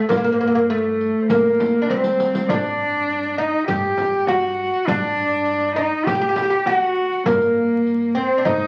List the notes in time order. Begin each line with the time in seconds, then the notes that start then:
Already playing: A3 A4
0.09 G2 A#3 A#4, riq, frame drum, darbuka dum
0.17 A#3
0.24 A#3, riq, darbuka ka
0.32 A#3 C5
0.41 A#3 A#4, riq, darbuka ka
0.47 A#3 A4
0.55 A#3
0.60 A#3 A#4
0.69 A3 A4, riq
0.77 A#4
0.83 A4
1.01 riq
1.21 C5
1.29 D2 A#3 A#4, riq, frame drum, darbuka dum
1.60 riq, darbuka tek, frame drum
1.82 D4
1.88 C4 C5, riq, darbuka tek, frame drum
2.04 riq, darbuka ka
2.20 riq, darbuka tek
2.34 riq, darbuka ka
2.48 G2 D4 D5, riq, darbuka dum, frame drum
2.54 C5
2.61 D5
2.66 riq
2.80 darbuka ka
3.10 riq, darbuka ka
3.36 D#4 D#5, darbuka ka
3.66 G2 G4 G5, riq, frame drum, darbuka dum
3.98 riq, darbuka tek, frame drum
4.25 F#4 F#5, riq, darbuka tek, frame drum
4.73 riq
4.86 G2 D4 D5, riq, frame drum, darbuka dum
5.03 riq
5.17 darbuka ka
5.48 riq, darbuka ka
5.76 D#4 D#5
5.83 D5
5.91 D#5
6.05 D2 G4 G5, riq, frame drum, darbuka dum
6.15 G4
6.21 G4
6.29 G4 A5
6.36 G4, riq, darbuka tek, frame drum
6.40 G4 G5
6.49 G4 F#5
6.56 G5
6.66 F#4 F#5, riq, darbuka tek, frame drum
7.12 riq
7.25 G2 A#3 A#4, riq, darbuka dum, frame drum
7.42 riq
7.86 riq, darbuka ka
8.15 C4 C5
8.38 D4
8.45 G2 D#4 D#5, riq, frame drum, darbuka dum